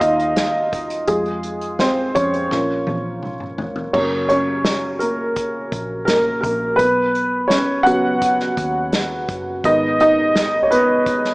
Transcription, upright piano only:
0.00 0.69 D#4 medium
0.00 1.09 F4 medium
0.00 0.68 D#5 medium
0.00 1.10 F5 loud
1.07 1.76 G#3 medium
1.07 2.47 F4 medium
1.07 1.82 G#4 medium
1.80 2.14 C4 medium
1.80 2.17 C5 medium
2.15 2.50 C#4 medium
2.15 3.54 C#5 medium
2.51 3.54 A#3 soft
2.51 3.54 C#4 soft
2.51 3.54 F4 medium
3.93 4.97 C#3 soft
3.93 4.97 F#3 soft
3.93 4.98 A#3 medium
3.93 4.28 C#4 medium
3.93 4.27 C#5 medium
4.29 4.98 C#4 medium
4.29 5.03 C#5 medium
4.99 6.04 A#3 medium
4.99 6.03 A#4 medium
6.05 6.39 A#4 medium
6.10 6.42 A#3 medium
6.41 6.77 A#3 medium
6.41 6.79 A#4 medium
6.76 7.51 B4 medium
6.81 7.47 B3 medium
7.48 7.84 C#4 medium
7.48 7.82 C#5 medium
7.83 8.33 C#3 soft
7.83 8.33 F#3 soft
7.83 8.34 B3 medium
7.83 9.25 F#4 medium
7.83 9.23 F#5 loud
9.64 10.67 D#3 soft
9.64 10.67 G#3 soft
9.64 10.68 B3 medium
9.64 9.98 D#4 medium
9.64 9.99 D#5 loud
10.01 10.61 D#4 medium
10.01 10.60 D#5 loud
10.63 10.70 C#5 medium
10.71 11.34 B3 medium
10.71 11.34 B4 medium

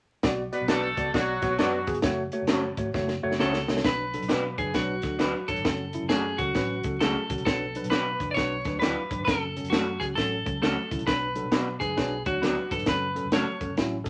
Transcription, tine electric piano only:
0.23 0.42 B3 loud
0.23 0.42 F#4 medium
0.23 0.42 D5 loud
0.52 0.63 B3 medium
0.52 0.63 F#4 medium
0.52 0.63 D5 medium
0.68 0.87 B3 medium
0.68 0.87 F#4 medium
0.68 0.87 D5 medium
0.97 1.08 B3 medium
0.97 1.08 F#4 medium
0.97 1.08 D5 medium
1.14 1.32 B3 medium
1.14 1.32 F#4 medium
1.14 1.33 D5 medium
1.42 1.53 B3 loud
1.42 1.53 F#4 medium
1.42 1.53 C#5 loud
1.60 1.78 B3 loud
1.60 1.78 F#4 medium
1.60 1.78 D5 loud
1.87 1.98 B3 medium
1.87 1.98 F#4 medium
1.87 1.98 G#4 medium
2.04 2.22 A3 loud
2.04 2.22 F#4 medium
2.04 2.22 C#5 loud
2.33 2.43 A3 medium
2.33 2.44 F#4 medium
2.33 2.43 C#5 medium
2.50 2.68 A3 medium
2.50 2.68 F#4 medium
2.50 2.68 C#5 medium
2.78 2.88 A3 medium
2.78 2.89 F#4 medium
2.78 2.89 C#5 medium
2.94 3.13 A3 medium
2.94 3.13 F#4 medium
2.94 3.13 C#5 medium
3.23 3.33 A3 loud
3.23 3.34 F#4 medium
3.23 3.34 C#5 loud
3.40 3.58 A3 loud
3.40 3.58 F#4 medium
3.40 3.58 C#5 loud
3.69 3.79 A3 medium
3.69 3.79 F#4 medium
3.69 3.79 C#5 medium
3.85 4.03 F#3 medium
3.85 4.03 D4 medium
3.85 4.03 B4 medium
4.13 4.24 F#3 medium
4.13 4.24 D4 medium
4.13 4.24 A4 medium
4.30 4.48 F#3 medium
4.30 4.49 D4 medium
4.30 4.48 B4 medium
4.58 4.69 F#3 medium
4.58 4.69 D4 medium
4.58 4.69 B4 medium
4.75 4.93 F#3 medium
4.75 4.93 D4 medium
4.75 4.93 B4 medium
5.04 5.14 F#3 medium
5.04 5.14 D4 medium
5.04 5.14 A4 medium
5.20 5.39 F#3 medium
5.20 5.39 D4 medium
5.20 5.39 B4 medium
5.49 5.60 F#3 medium
5.49 5.60 D4 medium
5.49 5.60 C#5 medium
5.66 5.84 F#3 medium
5.66 5.84 C#4 medium
5.66 5.84 A4 medium
5.94 6.05 F#3 medium
5.94 6.05 C#4 medium
5.94 6.05 E4 medium
6.12 6.30 F#3 medium
6.12 6.30 C#4 medium
6.12 6.30 A4 medium
6.40 6.50 F#3 medium
6.40 6.51 C#4 medium
6.40 6.51 A4 medium
6.56 6.74 F#3 medium
6.56 6.75 C#4 medium
6.56 6.75 B4 loud
6.85 6.95 F#3 medium
6.85 6.96 C#4 medium
6.85 6.96 A4 medium
7.01 7.19 F#3 medium
7.01 7.20 C#4 medium
7.01 7.19 G#4 medium
7.30 7.40 F#3 medium
7.30 7.41 C#4 medium
7.30 7.41 F#4 medium
7.46 7.64 F#3 medium
7.46 7.65 D4 medium
7.46 7.65 B4 medium
7.76 7.86 F#3 medium
7.76 7.86 D4 medium
7.76 7.86 B4 medium
7.92 8.10 F#3 medium
7.92 8.10 D4 medium
7.92 8.10 B4 medium
8.21 8.31 F#3 medium
8.21 8.31 D4 medium
8.21 8.31 B4 medium
8.38 8.56 F#3 medium
8.38 8.56 D4 medium
8.38 8.56 B4 loud
8.67 8.77 F#3 medium
8.67 8.77 D4 medium
8.67 8.77 B4 medium
8.84 9.01 F#3 medium
8.84 9.01 D4 medium
8.84 9.01 E4 medium
9.11 9.21 F#3 medium
9.11 9.22 D4 medium
9.11 9.22 B4 medium
9.28 9.46 F#3 medium
9.28 9.46 C#4 medium
9.28 9.46 A4 medium
9.57 9.67 F#3 medium
9.57 9.67 C#4 medium
9.57 9.67 A4 medium
9.74 9.91 F#3 medium
9.74 9.91 C#4 medium
9.74 9.92 A4 medium
10.02 10.12 F#3 medium
10.02 10.12 C#4 medium
10.02 10.12 F#4 medium
10.17 10.36 F#3 medium
10.17 10.36 C#4 medium
10.17 10.36 A4 loud
10.45 10.56 F#3 medium
10.45 10.56 C#4 medium
10.45 10.56 A4 medium
10.62 10.80 F#3 medium
10.62 10.81 C#4 medium
10.62 10.80 A4 medium
10.91 11.02 F#3 medium
10.91 11.02 C#4 medium
10.91 11.02 E4 medium
11.08 11.26 F#3 medium
11.08 11.26 D4 medium
11.08 11.26 B4 medium
11.36 11.46 F#3 medium
11.36 11.46 D4 medium
11.36 11.47 A4 medium
11.52 11.71 F#3 medium
11.52 11.71 D4 medium
11.52 11.71 B4 medium
11.81 11.92 F#3 medium
11.81 11.92 D4 medium
11.81 11.92 B4 medium
11.97 12.16 F#3 medium
11.97 12.16 D4 medium
11.97 12.16 B4 medium
12.26 12.37 F#3 medium
12.26 12.37 D4 medium
12.26 12.37 C#5 medium
12.42 12.61 F#3 medium
12.42 12.61 D4 medium
12.42 12.61 B4 medium
12.72 12.82 F#3 medium
12.72 12.82 D4 medium
12.72 12.82 B4 medium
12.87 13.06 F#3 medium
12.87 13.06 C#4 medium
12.87 13.06 A4 medium
13.15 13.26 F#3 medium
13.15 13.26 C#4 medium
13.15 13.26 A4 medium
13.33 13.51 F#3 medium
13.33 13.51 C#4 medium
13.33 13.51 A4 medium
13.61 13.72 F#3 medium
13.61 13.72 C#4 medium
13.61 13.72 A4 medium
13.77 13.96 F#3 medium
13.77 13.96 C#4 medium
13.77 13.96 E4 medium
14.04 14.10 F#3 medium
14.04 14.10 C#4 medium
14.04 14.10 A4 medium

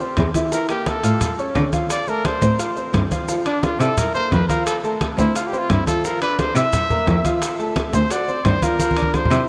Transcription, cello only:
0.17 0.25 E2 medium
1.04 1.12 A2 medium
1.55 1.63 D3 medium
2.41 2.49 A2 medium
2.93 3.01 G2 medium
3.80 3.88 C3 medium
4.31 4.39 F2 medium
5.18 5.26 D2 medium
5.70 5.78 G2 medium
6.55 6.63 C3 medium
7.07 7.15 F2 medium
7.93 8.01 D2 medium
8.45 8.53 G2 medium
9.31 9.39 C3 loud

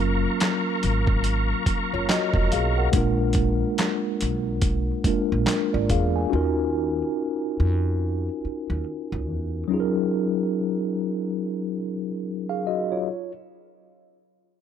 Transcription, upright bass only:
0.00 0.24 F#1 medium
0.84 1.51 G#1 medium
1.67 muted upright bass stroke soft
1.94 2.07 F#1 medium
2.35 2.48 F1 medium
2.53 2.86 B1 medium
2.94 3.62 A#1 loud
4.22 4.90 B1 medium
5.05 muted upright bass stroke soft
5.32 5.45 A#1 medium
5.74 5.92 G#1 medium
5.91 6.24 E2 medium
6.33 7.01 D#2 medium
7.60 8.27 F2 medium
8.45 muted upright bass stroke soft
8.70 8.83 D#2 medium
9.12 9.29 C#2 medium
9.29 9.62 E2 loud

